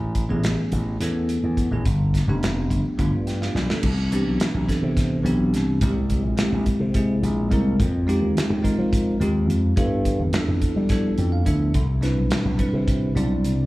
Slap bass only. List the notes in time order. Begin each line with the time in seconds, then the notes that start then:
Already playing: A1
0.31 A1
0.72 A1
1.00 E2
1.43 E2
1.71 A1
1.86 G1
2.28 F1
2.70 G1
2.98 G1
3.12 G2
3.55 B1
3.83 C2
4.25 B1
4.54 B1
4.83 C3
5.24 B1
5.54 C2
5.82 C2
6.24 A#1
6.52 A#1
6.80 C3
7.23 A#1
7.51 C2
7.80 F2
8.22 D#2
8.50 D#2
8.78 F3
9.20 D#2
9.48 F2
9.77 G2
10.19 F2
10.48 F2
10.76 G3
11.18 F2
11.46 D2
11.74 C2
12.18 B1
12.45 B1
12.73 C3
13.15 B1
13.44 C2